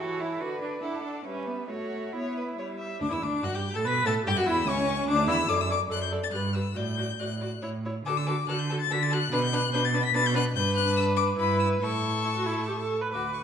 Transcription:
0.00 E3 F#4 A4 C#5
0.20 E4
0.40 D3 F#4 B4 D5
0.62 D4
0.82 D4 E4 A4 F#5
1.03 D4
1.25 G3 C#4 B4 E5
1.47 B3
1.69 A3 F#4 C#5 E5
2.14 B3 E4 C#5
2.37 B4
2.58 G3 C#5
2.78 E5
3.01 D2 D4 D6
3.11 E2 E4 E6
3.22 D2 D4 D6
3.43 F#2 F#4 F#6
3.54 G2 G4 G6
3.75 A2 A4 A6
3.85 B2 B4 B6
4.05 A2 A4 A6
4.25 G2 G4 G6
4.36 F#2 F#4 F#6
4.46 E2 E4 E6
4.66 C#2 C#4 C#6
5.07 D2 D4 D6
5.28 E2 E4 E6
5.48 F#2 A4 D5 D6
5.61 E6
5.69 A4 D5 D6
5.90 F#2 A4 D5 F#6
6.02 G6
6.12 A4 D5
6.24 A6
6.32 G2 G4 B4 F#6
6.54 G4 B4 E6
6.74 A2 F#4 D5 G6
6.97 F#4 D5
7.19 A2 F#4 D5 F#6
7.40 F#4 D5
7.62 A2 E4 C#5
7.85 E4 C#5
8.06 D3 F#4 A4 D6
8.17 E6
8.27 F#4 A4 D6
8.48 D3 F#4 A4 F#6
8.59 G6
8.70 F#4 A4
8.81 A6
8.90 D3 F#4 A4 B6
9.03 A6
9.10 F#4 A4 F#6
9.32 B2 D4 B4 F#6
9.44 G6
9.52 D4 B4 F#6
9.72 B2 D4 B4 G6
9.85 A6
9.94 D4 B4
10.05 B6
10.14 B2 D4 B4 A6
10.26 G6
10.34 D4 B4 F#6
10.55 G2 D4 B4 G6
10.77 F#6
10.97 E6
11.16 D6
11.37 G2 E4 B4 B5
11.60 E6
11.82 A2 E4 A4 C#6
12.25 E4
12.35 F#4
12.45 E4
12.67 G4
12.80 A4
13.01 B4
13.12 D2 F#4 B4 D6
13.34 C#6

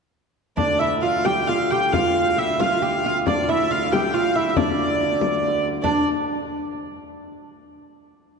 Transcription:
0.57 D2 D4 D5, frame drum
0.79 E4 E5, frame drum
1.02 F4 F5, frame drum
1.25 G4 G5, frame drum
1.48 F4 F5
1.71 G4 G5, frame drum
1.93 F4 F5, frame drum
2.16 frame drum
2.37 E4 E5, frame drum
2.60 F4 F5, frame drum
2.82 G4
3.04 F4 F5, frame drum
3.27 D4 D5, frame drum
3.44 F4
3.49 E4 E5, frame drum
3.71 F4 F5, frame drum
3.93 G4 G5, frame drum
4.14 F4 F5
4.36 E4 E5, frame drum
4.49 E5
4.57 D4 D5, frame drum
4.79 frame drum
5.21 frame drum
5.43 frame drum
5.83 D4 D5, frame drum

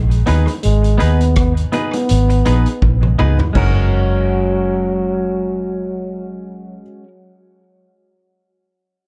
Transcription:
Already playing: A#1 G#3
0.11 closed hi-hat
0.26 D#2 B3 D#4 G#4 B4, closed hi-hat, low bongo
0.47 muted clean electric guitar stroke, closed hi-hat, high bongo
0.63 G#1 G#3, closed hi-hat
0.84 closed hi-hat
0.98 B3 D#4 G#4 B4, closed hi-hat
1.02 D#2
1.21 closed hi-hat
1.36 B3, kick, cross-stick, closed hi-hat
1.57 closed hi-hat
1.72 B3 D#4 G#4 B4, closed hi-hat, low bongo
1.93 closed hi-hat, high bongo
2.09 G#1, closed hi-hat
2.30 muted clean electric guitar stroke, closed hi-hat
2.45 A#1 B3 D#4 G#4 B4, closed hi-hat
2.66 closed hi-hat
2.82 A#1, kick, high tom, high bongo
3.03 mid tom
3.19 C#2 B3 D#4 G#4 B4, mid tom, low bongo
3.39 muted clean electric guitar stroke, floor tom, high bongo
3.53 F#1 F#3 G#3 C#4 F#4 G#4 A#4, kick, crash, high bongo
3.58 A#4

